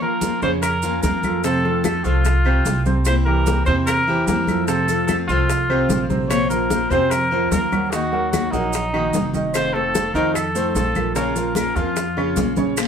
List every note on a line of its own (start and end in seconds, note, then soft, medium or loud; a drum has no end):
0.00 0.21 F3 medium
0.00 0.35 F3 medium
0.00 0.22 A#3 medium
0.00 0.22 C#4 medium
0.00 0.22 F4 medium
0.00 0.35 F4 medium
0.00 0.40 A#4 medium
0.00 0.36 A#4 medium
0.00 high bongo soft
0.00 high conga soft
0.21 0.42 F3 soft
0.21 0.42 A#3 soft
0.21 0.42 C#4 soft
0.21 0.42 F4 soft
0.21 high bongo medium
0.21 high conga medium
0.21 maracas medium
0.42 0.99 F2 medium
0.42 0.76 C#3 medium
0.42 0.62 A#3 medium
0.42 0.76 C#4 medium
0.42 0.62 C#4 medium
0.42 0.62 F4 medium
0.42 0.52 C5 medium
0.42 0.76 C#5 medium
0.42 high bongo soft
0.42 high conga soft
0.42 maracas soft
0.62 1.00 A#4 medium
0.62 muted steel-string acoustic guitar stroke medium
0.62 high bongo medium
0.62 high conga soft
0.62 claves medium
0.62 maracas medium
0.82 1.16 F3 medium
0.82 1.02 A#3 medium
0.82 1.03 C#4 medium
0.82 1.02 F4 medium
0.82 1.16 F4 medium
0.82 1.17 A#4 medium
0.82 high conga soft
0.82 maracas medium
1.03 1.99 F2 medium
1.03 1.43 F3 soft
1.03 1.43 A#3 soft
1.03 1.43 C#4 medium
1.03 1.44 F4 medium
1.03 1.41 A#4 medium
1.03 high bongo soft
1.03 low bongo medium
1.03 high conga medium
1.03 maracas medium
1.23 1.40 F3 medium
1.23 1.41 F4 medium
1.23 1.41 A4 medium
1.23 high bongo soft
1.23 high conga medium
1.23 claves medium
1.23 maracas soft
1.44 1.84 C3 medium
1.44 1.61 C3 medium
1.44 1.83 F3 medium
1.44 1.84 A3 medium
1.44 1.61 C4 medium
1.44 1.84 C4 medium
1.44 1.84 F4 medium
1.44 1.82 A4 medium
1.44 1.61 C5 medium
1.44 high bongo medium
1.44 high conga soft
1.44 maracas medium
1.64 1.97 F3 medium
1.64 1.98 F4 medium
1.64 1.98 A4 medium
1.64 high bongo soft
1.64 high conga soft
1.84 2.04 F3 soft
1.84 2.04 A3 medium
1.84 2.04 C4 medium
1.84 2.03 F4 medium
1.84 2.06 A4 medium
1.84 high bongo medium
1.84 high conga medium
1.84 claves medium
1.84 maracas medium
2.04 2.61 C2 medium
2.04 2.38 F3 medium
2.04 2.24 F3 soft
2.04 2.24 A3 medium
2.04 2.24 C4 medium
2.04 2.24 F4 medium
2.04 2.85 F4 loud
2.04 2.38 F4 medium
2.04 2.39 A4 medium
2.04 high bongo soft
2.04 high conga soft
2.04 maracas soft
2.24 muted steel-string acoustic guitar stroke medium
2.24 high bongo medium
2.24 high conga soft
2.24 maracas medium
2.45 2.79 C3 medium
2.45 2.64 F3 medium
2.45 2.65 A3 medium
2.45 2.65 C4 medium
2.45 2.79 C4 medium
2.45 2.64 F4 medium
2.45 2.79 C5 medium
2.45 high conga soft
2.45 claves medium
2.65 3.61 C2 medium
2.65 3.05 F3 soft
2.65 3.05 A3 soft
2.65 3.06 C4 soft
2.65 3.06 F4 medium
2.65 high bongo soft
2.65 low bongo medium
2.65 high conga medium
2.65 maracas medium
2.86 3.19 C3 medium
2.86 3.19 C4 medium
2.86 3.19 C5 medium
2.86 high bongo soft
2.86 high conga medium
2.86 maracas soft
3.05 3.45 C3 medium
3.05 3.46 E3 medium
3.05 3.46 A#3 medium
3.05 3.46 C4 medium
3.05 3.46 E4 medium
3.05 3.15 C5 loud
3.05 high bongo medium
3.05 high conga soft
3.05 claves medium
3.05 maracas medium
3.25 3.60 E3 medium
3.25 3.60 E4 medium
3.25 3.60 G4 medium
3.25 3.64 A#4 loud
3.25 high bongo soft
3.25 high conga soft
3.46 3.66 E3 soft
3.46 3.67 A#3 soft
3.46 3.67 C4 medium
3.46 3.66 E4 medium
3.46 high bongo medium
3.46 high conga medium
3.46 maracas medium
3.66 4.24 E2 medium
3.66 4.00 C3 medium
3.66 3.87 E3 medium
3.66 3.87 A#3 soft
3.66 4.00 C4 medium
3.66 3.87 C4 medium
3.66 3.86 E4 medium
3.66 3.75 C5 medium
3.66 4.01 C5 medium
3.66 high bongo soft
3.66 high conga soft
3.66 maracas soft
3.86 4.24 A#4 loud
3.86 muted steel-string acoustic guitar stroke medium
3.86 high bongo medium
3.86 high conga soft
3.86 claves medium
3.86 maracas medium
4.07 4.41 E3 medium
4.07 4.26 E3 soft
4.07 4.27 A#3 medium
4.07 4.27 C4 medium
4.07 4.27 E4 medium
4.07 4.41 E4 medium
4.07 4.41 G4 medium
4.07 high conga soft
4.27 5.23 F2 medium
4.27 4.67 E3 soft
4.27 4.68 A#3 soft
4.27 4.68 C4 medium
4.27 4.68 E4 medium
4.27 4.65 A#4 medium
4.27 high bongo soft
4.27 low bongo medium
4.27 high conga medium
4.27 maracas medium
4.47 4.64 F3 medium
4.47 4.65 F4 medium
4.47 4.65 A4 medium
4.47 high bongo soft
4.47 high conga medium
4.47 claves medium
4.47 maracas soft
4.67 4.85 C3 medium
4.67 5.08 C3 medium
4.67 5.08 F3 medium
4.67 5.08 A3 medium
4.67 4.85 C4 medium
4.67 5.09 C4 medium
4.67 5.09 F4 medium
4.67 5.05 A4 loud
4.67 4.85 C5 medium
4.67 high bongo medium
4.67 high conga soft
4.67 maracas medium
4.88 5.22 F3 medium
4.88 5.22 F4 medium
4.88 5.22 A4 medium
4.88 high bongo soft
4.88 high conga soft
4.88 maracas medium
5.07 5.28 F3 soft
5.07 5.29 A3 soft
5.07 5.29 C4 medium
5.07 5.17 A4 medium
5.07 high bongo medium
5.07 high conga medium
5.07 claves medium
5.07 maracas medium
5.11 5.28 F4 medium
5.27 5.86 C2 medium
5.27 5.62 F3 medium
5.27 5.49 F3 soft
5.27 5.49 A3 medium
5.27 5.49 C4 medium
5.27 6.05 F4 medium
5.27 5.49 F4 medium
5.27 5.62 F4 medium
5.27 5.63 A4 medium
5.27 high bongo soft
5.27 high conga soft
5.27 maracas soft
5.49 muted steel-string acoustic guitar stroke medium
5.49 high bongo medium
5.49 high conga soft
5.49 maracas medium
5.69 6.03 C3 medium
5.69 5.89 F3 medium
5.69 5.90 A3 medium
5.69 6.03 C4 medium
5.69 5.89 C4 medium
5.69 5.89 F4 medium
5.69 6.03 C5 medium
5.69 high conga soft
5.69 claves medium
5.89 6.85 A#1 medium
5.89 6.29 F3 soft
5.89 6.30 A3 soft
5.89 6.30 C4 soft
5.89 6.30 F4 soft
5.89 high bongo soft
5.89 low bongo medium
5.89 high conga medium
5.89 maracas medium
6.10 6.43 C3 medium
6.10 6.43 C5 medium
6.10 high bongo soft
6.10 high conga medium
6.10 maracas soft
6.29 6.70 F3 medium
6.29 6.70 A#3 medium
6.29 6.70 C#4 medium
6.29 6.70 F4 medium
6.29 6.71 C5 medium
6.29 6.48 C#5 loud
6.29 high bongo medium
6.29 high conga soft
6.29 claves medium
6.29 maracas medium
6.50 6.84 F3 medium
6.50 6.84 F4 medium
6.50 6.92 A#4 medium
6.50 6.84 A#4 medium
6.50 high bongo soft
6.50 high conga soft
6.50 maracas medium
6.70 6.90 A#3 soft
6.70 6.90 C#4 soft
6.70 6.90 F4 soft
6.70 6.89 C5 soft
6.70 high bongo soft
6.70 high conga medium
6.70 maracas medium
6.90 7.47 F2 medium
6.90 7.24 C3 medium
6.90 7.10 A#3 medium
6.90 7.25 C4 medium
6.90 7.10 C#4 medium
6.90 7.11 F4 medium
6.90 7.10 C5 medium
6.90 7.12 C5 medium
6.90 7.25 C5 medium
6.90 high bongo soft
6.90 high conga soft
6.90 maracas soft
7.10 7.50 A#4 medium
7.10 muted steel-string acoustic guitar stroke medium
7.10 high bongo medium
7.10 high conga soft
7.10 claves medium
7.10 maracas medium
7.31 7.65 F3 medium
7.31 7.50 A#3 medium
7.31 7.51 C#4 medium
7.31 7.51 F4 medium
7.31 7.65 F4 medium
7.31 7.65 A#4 medium
7.31 7.51 C5 medium
7.31 high conga soft
7.51 8.46 D#2 medium
7.51 7.91 A#3 soft
7.51 7.92 C#4 soft
7.51 7.92 F4 soft
7.51 7.93 A#4 medium
7.51 7.92 C5 medium
7.51 high bongo soft
7.51 low bongo medium
7.51 high conga medium
7.51 maracas medium
7.72 7.89 F#3 medium
7.72 7.89 F#4 medium
7.72 7.89 A#4 medium
7.72 high bongo soft
7.72 high conga medium
7.72 claves medium
7.72 maracas soft
7.91 8.32 D#3 medium
7.91 8.09 D#3 medium
7.91 8.32 A#3 medium
7.91 8.09 D#4 medium
7.91 8.33 D#4 medium
7.91 8.31 F#4 medium
7.91 8.33 F#4 medium
7.91 8.09 D#5 medium
7.91 high bongo medium
7.91 high conga soft
7.91 maracas medium
8.12 8.46 F#3 medium
8.12 8.46 F#4 medium
8.12 8.46 A#4 medium
8.12 high bongo soft
8.12 high conga soft
8.31 8.52 D#3 soft
8.31 8.53 A#3 soft
8.31 8.53 D#4 medium
8.31 8.53 F#4 medium
8.31 8.52 F#4 medium
8.31 high bongo medium
8.31 high conga medium
8.31 claves medium
8.31 maracas medium
8.51 9.09 A#1 medium
8.51 8.86 F#3 medium
8.51 8.73 A#3 medium
8.51 9.33 D#4 medium
8.51 8.73 D#4 medium
8.51 8.86 F#4 medium
8.51 8.73 F#4 medium
8.51 8.87 A#4 medium
8.51 high bongo soft
8.51 high conga soft
8.51 maracas soft
8.73 muted steel-string acoustic guitar stroke medium
8.73 high bongo medium
8.73 high conga soft
8.73 maracas medium
8.93 9.27 D#3 medium
8.93 9.13 A#3 medium
8.93 9.27 D#4 medium
8.93 9.14 D#4 medium
8.93 9.13 F#4 medium
8.93 9.27 D#5 medium
8.93 high conga soft
8.93 claves medium
9.13 10.08 F1 medium
9.13 9.53 D#3 medium
9.13 9.54 A#3 medium
9.13 9.54 D#4 medium
9.13 9.54 F#4 soft
9.13 high bongo soft
9.13 low bongo medium
9.13 high conga medium
9.13 maracas medium
9.34 9.67 D#3 medium
9.34 9.67 D#4 medium
9.34 9.68 D#5 medium
9.34 high bongo soft
9.34 high conga medium
9.34 maracas soft
9.54 9.94 C3 medium
9.54 9.93 D#3 medium
9.54 9.94 A3 medium
9.54 9.94 C4 medium
9.54 9.94 F4 medium
9.54 9.75 C5 medium
9.54 high bongo medium
9.54 high conga soft
9.54 claves medium
9.54 maracas medium
9.74 10.07 A3 medium
9.74 10.14 A4 medium
9.74 10.08 A4 medium
9.74 10.08 C5 medium
9.74 high bongo soft
9.74 high conga soft
9.94 10.14 D#3 soft
9.94 10.14 A3 soft
9.94 10.14 C4 soft
9.94 10.14 F4 medium
9.94 high bongo medium
9.94 high conga medium
9.94 maracas medium
10.14 10.71 F2 medium
10.14 10.48 D#3 medium
10.14 10.34 D#3 soft
10.14 10.34 A3 soft
10.14 10.34 C4 medium
10.14 10.48 D#4 medium
10.14 10.34 F4 medium
10.14 10.33 A#4 medium
10.14 10.48 D#5 medium
10.14 high bongo soft
10.14 high conga soft
10.14 maracas soft
10.34 10.72 A4 medium
10.34 muted steel-string acoustic guitar stroke medium
10.34 high bongo medium
10.34 high conga soft
10.34 claves medium
10.34 maracas medium
10.55 10.74 D#3 medium
10.55 10.88 A3 medium
10.55 10.75 A3 medium
10.55 10.75 C4 medium
10.55 10.74 F4 medium
10.55 10.88 A4 medium
10.55 10.89 C5 medium
10.55 high conga soft
10.55 maracas medium
10.74 11.70 A#1 medium
10.74 11.15 D#3 soft
10.74 11.15 A3 soft
10.74 11.15 C4 soft
10.74 11.16 F4 medium
10.74 11.13 A4 medium
10.74 high bongo soft
10.74 low bongo medium
10.74 high conga medium
10.74 maracas medium
10.95 11.12 F3 medium
10.95 11.12 F4 medium
10.95 11.13 A#4 medium
10.95 high bongo soft
10.95 high conga medium
10.95 claves medium
10.95 maracas soft
11.15 11.32 C#3 medium
11.15 11.55 F3 medium
11.15 11.56 A#3 medium
11.15 11.32 C#4 medium
11.15 11.56 C#4 medium
11.15 11.56 F4 medium
11.15 11.53 A#4 medium
11.15 11.33 C#5 medium
11.15 high bongo medium
11.15 high conga soft
11.15 maracas medium
11.36 11.69 F3 medium
11.36 11.69 F4 medium
11.36 11.69 A#4 medium
11.36 high bongo soft
11.36 high conga soft
11.36 maracas medium
11.55 11.76 F3 soft
11.55 11.76 A#3 soft
11.55 11.76 C#4 medium
11.55 11.75 F4 medium
11.55 11.78 A#4 medium
11.55 high bongo medium
11.55 high conga medium
11.55 claves medium
11.55 maracas medium
11.76 12.33 F2 medium
11.76 12.10 F3 medium
11.76 11.96 A#3 soft
11.76 11.96 C#4 medium
11.76 12.57 F4 medium
11.76 11.96 F4 medium
11.76 12.10 F4 medium
11.76 12.10 A#4 medium
11.76 high bongo soft
11.76 high conga soft
11.76 maracas soft
11.96 muted steel-string acoustic guitar stroke medium
11.96 high bongo medium
11.96 high conga soft
11.96 maracas medium
12.17 12.50 C#3 medium
12.17 12.36 A#3 medium
12.17 12.50 C#4 medium
12.17 12.37 C#4 medium
12.17 12.36 F4 medium
12.17 12.50 C#5 medium
12.17 high conga soft
12.17 claves medium
12.36 12.88 A#1 medium
12.36 12.76 F3 soft
12.36 12.76 A#3 medium
12.36 12.77 C#4 soft
12.36 12.77 F4 soft
12.36 high bongo soft
12.36 low bongo medium
12.36 high conga medium
12.36 maracas medium
12.56 12.74 C#3 medium
12.56 12.74 C#4 medium
12.56 12.74 C#5 medium
12.56 high bongo soft
12.56 high conga medium
12.56 maracas soft
12.77 12.88 F3 medium
12.77 12.88 A#3 medium
12.77 12.88 C#4 medium
12.77 12.88 F4 medium
12.77 high bongo medium
12.77 high conga soft
12.77 long guiro medium
12.77 claves medium
12.77 maracas medium